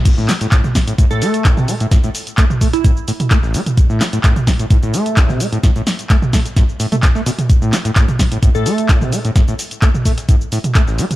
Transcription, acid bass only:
\new Staff \with { instrumentName = "Acid bass" } { \clef bass \time 4/4 \key a \minor \tempo 4 = 129 r16 a,16 a16 a,16 a,16 r16 c16 a,16 a,16 a,16 a8 a,16 c16 a16 a,16 | a,16 a,16 r8 a16 r16 a16 r16 a,16 r16 a,16 r16 a16 a,,16 a16 r16 | r16 a,16 a16 a,16 a,16 r16 c16 a,16 a,16 a,16 a8 a,16 c16 a16 a,16 | a,16 a,16 r8 a16 r16 a16 r16 a,16 r16 a,16 a16 a,,16 a16 b,16 r16 |
r16 a,16 a16 a,16 a,16 r16 c16 a,16 a,16 a,16 a8 a,16 c16 a16 a,16 | a,16 a,16 r8 a16 r16 a16 r16 a,16 r16 a,16 r16 a16 a,,16 a16 r16 | }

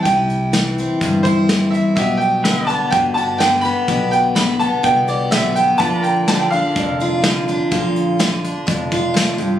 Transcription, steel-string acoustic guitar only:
\new Staff \with { instrumentName = "Steel-string acoustic guitar" } { \clef bass \time 4/4 \key g \mixolydian \tempo 4 = 125 << { e'4. c'4 e'4 c'8 | g'4. b4 g'4 b8 | g'4. b4 g'4 b8 | f'4. d'4 f'4 d'8 |
f'4. d'4 f'4. | } \\ { c4 e4 g,4 e4 | b,4 d4 b,4 d4 | b,4 d4 b,4 d4 | bes,4 d4 f,4 d4 |
bes,4 d4 f,4 a,8 g,8 | } >> }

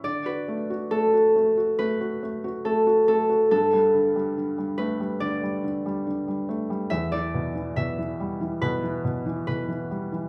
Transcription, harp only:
\new Staff \with { instrumentName = "Harp" } { \time 4/4 \key d \major \tempo 4 = 70 d''16 b'8. a'4 b'4 a'8 a'8 | a'4 r8 b'8 d''4 r4 | e''16 d''8. e''4 b'4 b'4 | }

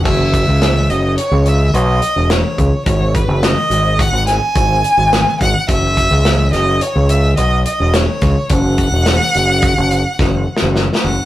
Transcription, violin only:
\new Staff \with { instrumentName = "Violin" } { \time 5/4 \key gis \phrygian \tempo 4 = 106 e''4. dis''8 cis''8 e''8 dis''4 cis''4 | cis''8 b'8 dis''4 fis''8 gis''2 fis''8 | e''4. dis''8 cis''8 e''8 dis''8 dis''8 cis''4 | fis''1 r8 fis''8 | }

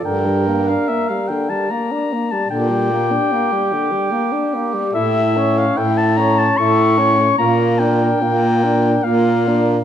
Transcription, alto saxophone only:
\new Staff \with { instrumentName = "Alto saxophone" } { \time 3/4 \key g \dorian \tempo 4 = 73 bes'2~ bes'8 r8 | g'2. | a'8 cis''8 a'8 cis''8 a'8 cis''8 | f'8 bes'8 f'8 bes'8 f'8 bes'8 | }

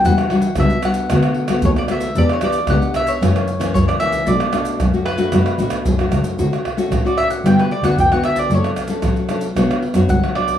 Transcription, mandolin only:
\new Staff \with { instrumentName = "Mandolin" } { \time 4/4 \key b \minor \tempo 4 = 114 fis''4 e''8 fis''4. cis''16 d''16 e''8 | d''16 cis''16 d''8 fis''8 e''16 cis''4~ cis''16 cis''16 d''16 e''8 | d''4 r8 b'4. r4 | \key d \major r4 r16 d''16 e''16 fis''16 g''16 b'16 d''16 fis''16 g''16 fis''16 e''16 d''16 |
cis''8 r2 r8 fis''8 d''8 | }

